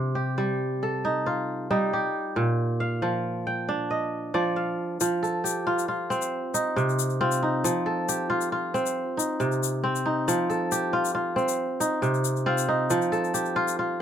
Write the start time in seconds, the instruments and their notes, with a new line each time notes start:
Already playing: kora C3 D5 F5
0.15 kora G4
0.38 kora G3
0.83 kora A4
1.05 kora D#4
1.26 kora F4
1.71 kora G3 D#4
1.93 kora G4
2.36 kora A#2
2.80 kora F5
3.02 kora F3
3.47 kora G5
3.69 kora D4
3.91 kora D#5
4.34 kora F3 D5
4.56 kora F5
5.01 kora F3, shaker
5.23 kora A4, shaker
5.44 kora G4, shaker
5.67 kora F4
5.79 shaker
5.88 kora F4
6.10 kora C4, shaker
6.22 shaker
6.54 kora D#4, shaker
6.76 kora C3, shaker
6.89 shaker
6.99 shaker
7.10 shaker
7.21 kora C4 F4
7.31 shaker
7.43 kora D#4
7.64 kora F3, shaker
7.86 kora A4
8.09 kora G4, shaker
8.30 kora F4
8.41 shaker
8.52 kora F4
8.74 kora C4, shaker
8.86 shaker
9.17 kora D#4, shaker
9.40 kora C3, shaker
9.52 shaker
9.63 shaker
9.84 kora C4
9.96 shaker
10.06 kora D#4
10.28 kora F3, shaker
10.50 kora A4, shaker
10.72 kora G4, shaker
10.93 kora F4
11.05 shaker
11.15 kora F4
11.36 kora C4, shaker
11.48 shaker
11.80 kora D#4, shaker
12.02 kora C3, shaker
12.14 shaker
12.24 shaker
12.36 shaker
12.46 kora C4 F4
12.58 shaker
12.68 kora D#4
12.90 kora F3, shaker
13.02 shaker
13.12 kora A4, shaker
13.24 shaker
13.34 kora G4, shaker
13.45 shaker
13.56 kora F4
13.68 shaker
13.79 kora F4